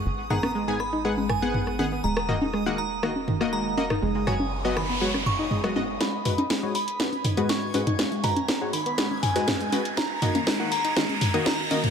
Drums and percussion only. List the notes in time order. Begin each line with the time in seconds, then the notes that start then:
0.30 mid tom
0.43 cross-stick, high conga
0.80 cross-stick
1.17 high conga
1.29 cross-stick, mid tom
1.54 mid tom
1.67 cross-stick
1.79 high conga
2.17 cross-stick
2.29 mid tom
2.42 high conga
2.54 cross-stick
3.03 cross-stick
3.16 high conga
3.28 mid tom
3.41 cross-stick
3.77 high conga
3.90 cross-stick, mid tom
4.27 cross-stick, mid tom
4.40 high conga
4.77 cross-stick
5.14 cross-stick, high conga
5.26 mid tom
5.51 mid tom
5.64 cross-stick
5.76 high conga
6.01 kick, snare, closed hi-hat
6.25 closed hi-hat, mid tom, open hi-hat
6.38 closed hi-hat, high conga
6.50 kick, snare, closed hi-hat, open hi-hat
6.75 closed hi-hat, open hi-hat
6.88 closed hi-hat
7.00 kick, snare, closed hi-hat
7.13 closed hi-hat, high conga
7.24 closed hi-hat, mid tom, open hi-hat
7.37 closed hi-hat
7.49 kick, snare, closed hi-hat
7.74 closed hi-hat, open hi-hat, high conga
7.87 closed hi-hat, mid tom
7.99 kick, snare, closed hi-hat
8.12 closed hi-hat
8.24 closed hi-hat, mid tom, open hi-hat
8.37 closed hi-hat, high conga
8.48 kick, snare, closed hi-hat
8.73 closed hi-hat, open hi-hat
8.86 closed hi-hat
8.98 kick, snare, closed hi-hat
9.11 high conga
9.23 closed hi-hat, mid tom, open hi-hat
9.36 snare, closed hi-hat
9.48 kick, snare, closed hi-hat, mid tom
9.61 closed hi-hat
9.72 closed hi-hat, open hi-hat, high conga
9.85 closed hi-hat
9.97 kick, snare, closed hi-hat
10.22 closed hi-hat, mid tom, open hi-hat
10.35 closed hi-hat, high conga
10.47 kick, snare, closed hi-hat, open hi-hat
10.72 closed hi-hat, open hi-hat
10.85 closed hi-hat
10.96 kick, snare, closed hi-hat
11.09 closed hi-hat, high conga
11.21 closed hi-hat, mid tom, open hi-hat
11.34 closed hi-hat
11.46 kick, snare, closed hi-hat
11.71 closed hi-hat, open hi-hat, high conga
11.84 closed hi-hat, mid tom